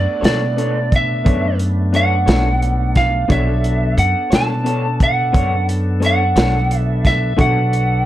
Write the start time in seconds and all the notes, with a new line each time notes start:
Already playing: A3 B3 D4 F#4 A4 D5 C#6
0.21 B2 D4 A4 C#5, closed hi-hat
0.25 D5, snare
0.57 B3 D4 A4 C#5, closed hi-hat
0.92 E5, kick, closed hi-hat
1.25 F#2 B3 D4 A4 C#5, kick, closed hi-hat
1.59 closed hi-hat
1.93 B3 D4 A4 C#5 F#5, closed hi-hat
2.26 B1 D4 A4 C#5, snare, closed hi-hat
2.62 closed hi-hat
2.95 F5, kick, snare, closed hi-hat
3.28 B1 B3 D4 F#4 A4 C#5 E5, kick, closed hi-hat
3.64 closed hi-hat
3.97 F#2 F#5, closed hi-hat
4.30 B2 D4 A4 C#5, snare, closed hi-hat
4.35 A5
4.64 B3 D4 A4 C#5, closed hi-hat
5.00 F#5, kick, closed hi-hat
5.33 F#2 B3 D4 A4 C#5, kick, closed hi-hat
5.69 closed hi-hat
6.00 B3 D4 A4 C#5, closed hi-hat
6.06 F#5
6.36 B1 D4 A4 C#5, snare, closed hi-hat
6.71 closed hi-hat
6.78 E5
7.05 E5, kick, snare, closed hi-hat
7.37 B1 B3 D4 F#4 A4 B4 C#5 C#6, kick, closed hi-hat
7.41 F#5
7.73 closed hi-hat